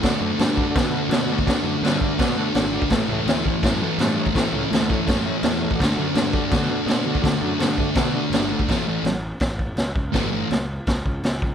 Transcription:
<<
  \new Staff \with { instrumentName = "Transistor combo organ" } { \time 4/4 \key a \mixolydian \tempo 4 = 166 <fis' a' d''>8 <fis' a' d''>8 <fis' a' d''>8 <fis' a' d''>8 <fis' a' d''>8 <fis' a' b'>8 <fis' a' d''>8 <fis' a' d''>8 | <fis' a' d''>8 <fis' a' d''>8 <fis' a' d''>8 <fis' a' d''>8 <fis' a' d''>8 <fis' a' d''>8 <fis' a' d''>8 <fis' a' d''>8 | <e' a' cis''>8 <e' a' cis''>8 <e' a' cis''>8 <e' a' cis''>8 <e' a' cis''>8 <e' a' cis''>8 <e' a' cis''>8 <e' a' cis''>8 | <e' a' cis''>8 <e' a' cis''>8 <e' a' cis''>8 <e' a' cis''>8 <e' a' cis''>8 <e' a' cis''>8 <e' a' cis''>8 <e' a' cis''>8 |
<fis' a' d''>8 <fis' a' d''>8 <fis' a' d''>8 <fis' a' d''>8 <fis' a' d''>8 <fis' a' d''>8 <fis' a' d''>8 <fis' a' d''>8 | <fis' a' d''>8 <fis' a' d''>8 <fis' a' d''>8 <fis' a' d''>8 <fis' a' cis''>8 <fis' a' d''>8 <fis' a' d''>8 <fis' a' d''>8 | r1 | r1 | }
  \new Staff \with { instrumentName = "Distorted electric guitar" } { \time 4/4 \key a \mixolydian <d a d'>8 <d a d'>8 <d a d'>8 <d a d'>8 <d a d'>8 <d a d'>8 <d a d'>8 <d a d'>8 | <d a d'>8 <d a d'>8 <d a d'>8 <d a d'>8 <d a d'>8 <d a d'>8 <d a d'>8 <d a d'>8 | <a, e a>8 <a, e a>8 <a, e a>8 <a, e a>8 <a, e a>8 <a, e a>8 <a, e a>8 <a, e a>8 | <a, e a>8 <a, e a>8 <a, e a>8 <a, e a>8 <a, e a>8 <a, e a>8 <a, e a>8 <a, e a>8 |
<d a d'>8 <d a d'>8 <d a d'>8 <d a d'>8 <d a d'>8 <d a d'>8 <d a d'>8 <d a d'>8 | <d a d'>8 <d a d'>8 <d a d'>8 <d a d'>8 <d a d'>8 <d a d'>8 <d a d'>8 <d a d'>8 | <a, e a>8 <a, e a>8 r2. | <a, e a>8 <a, e a>8 r2. | }
  \new Staff \with { instrumentName = "Picked electric bass" } { \clef bass \time 4/4 \key a \mixolydian d,8 fis,8 g,4 b,4 b,4 | d,8 fis,8 g,4 b,4 gis,,4 | a,,8 cis,8 d,4 fis,4 g,4 | a,,8 cis,8 d,4 fis,4 e,4 |
d,8 fis,8 g,4 b,4 b,4 | d,8 fis,8 g,4 b,4 g,,4 | a,,4 a,,4 a,,4 cis,8 cis,8 | g,,4 cis,4 cis,8 cis,8 cis,4 | }
  \new DrumStaff \with { instrumentName = "Drums" } \drummode { \time 4/4 <cymc bd sn>4 <cymc sn>8 bd8 <cymc bd sn>4 <cymc sn>8. bd16 | <cymc bd sn>4 <cymc sn>8 bd8 <cymc bd sn>4 <cymc sn>8. bd16 | <cymc bd sn>4 <cymc sn>8 bd8 <cymc bd sn>4 <cymc sn>8. bd16 | <cymc bd sn>4 <cymc sn>8 bd8 <cymc bd sn>4 <cymc sn>8. bd16 |
<cymc bd sn>4 <cymc sn>8 bd8 <cymc bd sn>4 <cymc sn>8. bd16 | <cymc bd sn>4 <cymc sn>8 bd8 <cymc bd sn>4 <cymc sn>8. bd16 | <cymc bd sn>4 <cymc sn>4 <cymc bd sn>8 bd8 <cymc sn>8 bd8 | <cymc bd sn>4 <cymc sn>4 <cymc bd sn>8 bd8 <cymc sn>8 bd8 | }
>>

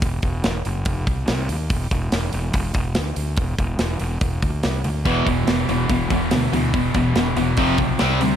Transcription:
<<
  \new Staff \with { instrumentName = "Distorted electric guitar" } { \clef bass \time 4/4 \key e \minor \tempo 4 = 143 r1 | r1 | r1 | <e, b, e>8 <e, b, e>8 <e, b, e>8 <e, b, e>8 <e, b, e>8 <e, b, e>8 <e, b, e>8 <e, b, e>8 |
<e, b, e>8 <e, b, e>8 <e, b, e>8 <e, b, e>8 <f, c f>8 <f, c f>8 <c g c'>8 <c g c'>8 | }
  \new Staff \with { instrumentName = "Overdriven electric guitar" } { \clef bass \time 4/4 \key e \minor r1 | r1 | r1 | <e, b, e>8 <e, b,>8 <e, b,>8 <e, b,>8 <e, b,>8 <e, b,>8 <e, b,>8 <e, b,>8 |
<e, b,>8 <e, b,>8 <e, b,>8 <e, b,>8 <f, c f>8 <f, c>8 <c g c'>8 <c g>8 | }
  \new Staff \with { instrumentName = "Overdriven electric guitar" } { \clef bass \time 4/4 \key e \minor r1 | r1 | r1 | <e, b, e>8 <e, b,>8 <e, b,>8 <e, b,>8 <e, b,>8 <e, b,>8 <e, b,>8 <e, b,>8 |
<e, b,>8 <e, b,>8 <e, b,>8 <e, b,>8 <f, c f>8 <f, c>8 <c g c'>8 <c g>8 | }
  \new Staff \with { instrumentName = "Fingered electric bass" } { \clef bass \time 4/4 \key e \minor e,,8 e,,8 e,,8 fis,,8 f,,8 c,8 c,8 ees,8 | e,,8 e,,8 e,,8 e,,8 e,,8 e,,8 d,8 d,8 | e,,8 e,,8 e,,8 e,,8 e,,8 d,8 c,8 d,8 | e,,8 e,,8 e,,8 e,,8 e,,8 e,,8 d,8 d,8 |
e,,8 e,,8 e,,8 e,,8 f,,8 b,,8 c,8 d,8 | }
  \new DrumStaff \with { instrumentName = "Drums" } \drummode { \time 4/4 <hho bd>8 <hho bd>8 <hho sn>8 hho8 <hho bd>8 <hho bd>8 <hho sn>8 hho8 | <hho bd>8 <hho bd>8 <hho sn>8 hho8 <hho bd>8 <hho bd>8 <hho sn>8 hho8 | <hho bd>8 <hho bd>8 <hho sn>8 hho8 <hho bd>8 <hho bd>8 <hho sn>8 hho8 | <hho bd>8 <hho bd>8 <hho sn>8 hho8 <hho bd>8 <hho bd>8 <hho sn>8 hho8 |
<hho bd>8 <hho bd>8 <hho sn>8 hho8 <hho bd>8 <hho bd>8 <hho sn>8 hho8 | }
>>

